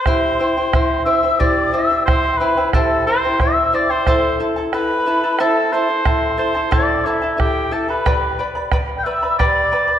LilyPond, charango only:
\new Staff \with { instrumentName = "Charango" } { \time 6/8 \key c \lydian \tempo 4. = 60 <e' g' c'' e'' g''>8 <e' c'' e'' g''>16 <e' c'' g''>16 <e' c'' e'' g''>8 <e' c'' e'' g''>16 <e' c'' g''>16 <e' g' c'' e'' g''>8 <e' c'' e'' g''>16 <e' c'' g''>16 | <e' c'' e'' g''>8 <e' c'' e'' g''>16 <e' c'' g''>16 <e' g' c'' e'' g''>8 <e' c'' e'' g''>16 <e' c'' g''>16 <e' c'' e'' g''>8 <e' c'' e'' g''>16 <e' c'' g''>16 | <e' a' c'' e'' a''>8 <e' a' e'' a''>16 <e' a' a''>16 <e' a' e'' a''>8 <e' a' e'' a''>16 <e' a' a''>16 <e' a' c'' e'' a''>8 <e' a' e'' a''>16 <e' a' a''>16 | <e' a' e'' a''>8 <e' a' e'' a''>16 <e' a' a''>16 <e' a' c'' e'' a''>8 <e' a' e'' a''>16 <e' a' a''>16 <e' a' e'' a''>8 <e' a' e'' a''>16 <e' a' a''>16 |
<g' b' d'' g'' b''>8 <b' d'' g'' b''>16 <b' d'' b''>16 <b' d'' g'' b''>8 <b' d'' g'' b''>16 <b' d'' b''>16 <g' b' d'' g'' b''>8 <b' d'' g'' b''>16 <b' d'' b''>16 | }